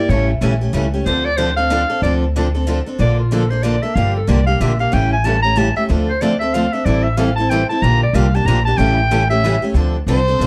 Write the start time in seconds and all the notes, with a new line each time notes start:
Already playing: D5
0.09 A1 C#3 E3 G3 A3 C#4 E4 G4 A4 C#5
0.41 A#1 C#3 E3 G3 A3 C#4 E4 G4 A4
0.61 A3 C#4 G4
0.73 C#2 C#3 E3 G3 A3 C#4 E4 G4 A4
0.94 A3 C#4 G4
1.06 D2 D3 F3 C4 D4 A4 C5
1.25 D5
1.37 D3 F3 C4 D4 A4 C5
1.56 C4 D4 A4 F5
1.70 D3 F3 C4 D4 A4
1.90 C4 D4 A4
2.02 D2 D3 F3 C4 D4 A4 D5
2.36 D3 F3 C4 D4 A4
2.55 C4 D4 A4
2.67 D3 F3 C4 D4 A4
2.86 C4 D4 A4
2.99 A#1 D3 F3 A#3 D4 A4 D5
3.19 F4
3.31 D3 F3 A#3 D4 A4
3.50 A#3 D4 A4 C5
3.62 D3 F3 A#3 D4 A4 D5
3.83 A#3 D4 A4 E5
3.95 G1 D3 F3 A#3 D4 G4 F5
4.16 A4
4.27 C2 D3 F3 A#3 D4 G4 D5
4.46 A#3 D4 G4 F5
4.60 A#1 D3 F3 A#3 D4 G4 E5
4.79 A#3 D4 G4 F5
4.92 A1 C#3 E3 G3 A3 C#4 E4 G4 A4 G5
5.13 G#5
5.24 C#3 E3 G3 A3 C#4 E4 G4 A4 A5
5.42 A3 C#4 G4 A#5
5.56 C#3 E3 G3 A3 C#4 G4 A4 A5
5.60 E4
5.76 A3 C#4 G4 E5
5.89 D2 D3 F3 A3 C4 D4 F4 A4
6.09 C5
6.21 D3 F3 A3 C4 D4 F4 A4 D5
6.39 D4 A4 E5
6.43 C4
6.54 D3 F3 A3 C4 D4 F4 A4 F5
6.73 C4 D4 A4 E5
6.85 A1 E3 G3 C4 E4 A4 D5
7.03 E5
7.17 E3 G3 C4 E4 A4 F5
7.36 E4 A4 A5
7.40 C4
7.50 E3 G3 C4 E4 A4 G5
7.69 C4 E4 A4 A5
7.82 A#1 D3 F3 A#3 D4 G4 A#5
8.03 D5
8.13 C2 D3 F3 A#3 D4 G4 F5
8.35 A#3 D4 G4 A5
8.45 A#1 D3 F3 A#3 D4 G4 A#5
8.65 D4 G4 A5
8.69 A#3
8.77 A1 C#3 E3 G3 A3 C#4 E4 G4 A4 G5
9.11 C#3 E3 G3 A3 C#4 E4 G4 A4
9.30 A3 C#4 G4 E5
9.44 C#3 E3 G3 A3 C#4 E4 G4 A4
9.62 A3 C#4 G4
9.74 D2 D3 F3 C4 D4 A4
10.07 C2 D3 F3 C4 D4 A4 C5
10.28 C4 D4 A4
10.39 A#1 D3 F3 C4 D4 A4